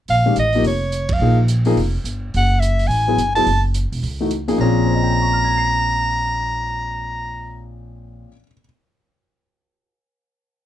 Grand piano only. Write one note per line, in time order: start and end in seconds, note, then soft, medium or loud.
0.26 0.35 D#3 medium
0.26 0.35 G#3 soft
0.26 0.35 C#4 medium
0.26 0.36 G4 medium
0.55 0.64 F3 medium
0.55 0.64 A#3 medium
0.55 0.64 D#4 medium
0.55 0.64 G4 medium
1.21 1.37 F3 soft
1.21 1.37 A#3 medium
1.21 1.37 D#4 soft
1.21 1.37 G#4 medium
1.66 1.76 F3 medium
1.66 1.76 A#3 medium
1.66 1.76 D#4 medium
1.66 1.76 G#4 medium
3.08 3.17 F#3 medium
3.08 3.17 B3 medium
3.08 3.18 E4 medium
3.08 3.18 G#4 medium
3.36 3.46 F#3 medium
3.36 3.46 B3 medium
3.36 3.46 E4 medium
3.36 3.46 G#4 medium
4.20 4.30 E3 medium
4.20 4.30 A3 soft
4.20 4.30 D#4 medium
4.20 4.30 F#4 medium
4.48 4.57 F3 medium
4.48 4.58 A#3 medium
4.48 4.58 D#4 medium
4.48 4.58 G#4 medium
4.58 8.27 A#2 medium
4.58 8.27 F3 medium
4.58 8.29 C4 medium
4.58 8.29 C#4 medium
4.58 8.30 G#4 medium
4.87 8.30 C5 soft
4.95 8.33 D#5 soft
5.03 8.38 G5 soft
5.12 8.42 A#5 soft
5.22 8.47 C#6 soft
5.33 8.53 F6 soft
5.44 8.58 G#6 soft
5.57 8.65 C7 soft